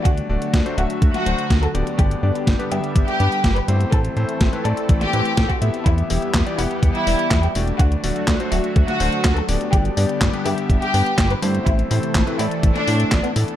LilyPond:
<<
  \new Staff \with { instrumentName = "Violin section" } { \time 4/4 \key g \major \tempo 4 = 124 fis'8. r8. fis'8. fis'8. r16 a'8. | g'8. r8. g'8. g'8. r16 b'8. | a'8. r8. a'8. g'8. r16 fis'8. | e'8. r8. e'8. e'8. r16 g'8. |
fis'8. r8. fis'8. fis'8. r16 a'8. | g'8. r8. g'8. g'8. r16 b'8. | e'8. r8. e'8. d'8. r16 b8. | }
  \new Staff \with { instrumentName = "Electric grand piano" } { \time 4/4 \key g \major <a d' fis' d''>8 <a d' fis' d''>8. <a d' fis' c''>16 <a d' fis' e''>4 <a d' fis' c''>16 r8. <b d' g' d''>8~ | <b d' g' d''>8 <b d' g' d''>8. <b d' g' b'>16 <b d' g' e''>4 <b d' g' b'>16 r8. <a c' e' c''>8~ | <a c' e' c''>8 <a c' e' c''>8. <a c' e' b'>16 <a c' e' d''>4 <a c' e' b'>16 r8. <b e' g' e''>8~ | <b e' g' e''>8 <b e' g' e''>8. <b e' g' d''>16 <b e' g' fis''>4 <b e' g' d''>16 r8. <a d' fis' d''>8~ |
<a d' fis' d''>8 <a d' fis' d''>8. <a d' fis' c''>16 <a d' fis' e''>4 <a d' fis' c''>16 r8. <b d' g' d''>8~ | <b d' g' d''>8 <b d' g' d''>8. <b d' g' b'>16 <b d' g' e''>4 <b d' g' b'>16 r8. <a c' e' c''>8~ | <a c' e' c''>8 <a c' e' c''>8. <a c' e' b'>16 <a c' e' d''>4 <a c' e' d''>4 <e b d' a'>8 | }
  \new Staff \with { instrumentName = "Analog synth pad" } { \time 4/4 \key g \major << { <fis a fis'>1 | <g b g'>1 | <a c' a'>1 | <g b g'>1 |
<fis a fis'>1 | <g b g'>1 | <c a a'>1 | } \\ { d1~ | d1 | e1 | e1 |
d1~ | d1 | e1 | } >> }
  \new Staff \with { instrumentName = "Analog synth bass" } { \clef bass \time 4/4 \key g \major d,8 d,,8 d,8 d,,8 d,8 d,,8 d,8 d,,8 | g,,8 g,8 g,,8 g,8 g,,8 g,8 g,,8 g,8 | a,,8 a,8 a,,8 a,8 a,,8 a,8 a,,8 a,8 | e,8 e,,8 e,8 e,,8 e,8 e,,8 e,8 e,,8 |
d,8 d,,8 d,8 d,,8 d,8 d,,8 d,8 d,,8 | g,,8 g,8 g,,8 g,8 g,,8 g,8 g,,8 g,8 | a,,8 a,8 a,,8 a,8 a,,8 a,8 a,,8 a,8 | }
  \new DrumStaff \with { instrumentName = "Drums" } \drummode { \time 4/4 <hh bd>16 hh8 hh16 <hh bd sn>16 hh16 hh16 hh16 <hh bd>16 <hh sn>16 hh16 hh16 <hh bd sn>16 hh16 hh16 hh16 | <hh bd>16 hh8 hh16 <hh bd sn>16 hh16 hh16 hh16 <hh bd>16 hh16 hh16 hh16 <hh bd sn>16 hh16 hh16 hh16 | <hh bd>16 hh16 hh16 hh16 <hh bd sn>16 hh16 hh16 hh16 <hh bd>16 <hh sn>16 hh16 hh16 <hh bd sn>16 <hh bd>16 hh16 hh16 | <hh bd>16 hh16 hho16 hh16 <hc hh bd sn>16 hh16 hho16 hh16 <hh bd>16 hh16 hho16 hh16 <hc hh bd sn>16 hh16 hho16 hh16 |
<hh bd>16 hh16 hho16 hh16 <hc hh bd sn>16 hh16 hho16 hh16 <hh bd>16 <hh sn>16 hho16 hh16 <hc hh bd sn>16 hh16 hho16 hh16 | <hh bd>16 hh16 hho16 hh16 <hc hh bd sn>16 hh16 hho16 hh16 <hh bd>16 hh16 hho16 hh16 <hc hh bd sn>16 hh16 hho16 hh16 | <hh bd>16 hh16 hho16 hh16 <hc hh bd sn>16 hh16 hho16 hh16 <hh bd>16 <hh sn>16 hho16 hh16 <hc hh bd sn>16 hh16 hho16 hh16 | }
>>